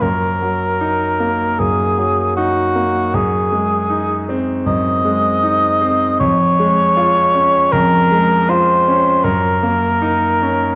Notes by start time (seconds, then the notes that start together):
0.01 F#2 A#4
0.42 F#3
0.81 D#4
1.20 A#3
1.59 F#2 G#4
1.98 F#3
2.37 D#4 F#4
2.75 A#3
3.14 F#2 G#4
3.52 G#3
3.90 D#4
4.29 C4
4.66 F#2 D#5
5.05 G#3
5.43 D#4
5.81 C4
6.19 F2 C#5
6.59 G#3
6.97 F4
7.34 C#4
7.72 F2 A#4
8.11 G#3
8.49 F4 C5
8.88 C#4
9.24 F#2 A#4
9.63 A#3
10.02 D#4
10.42 C#4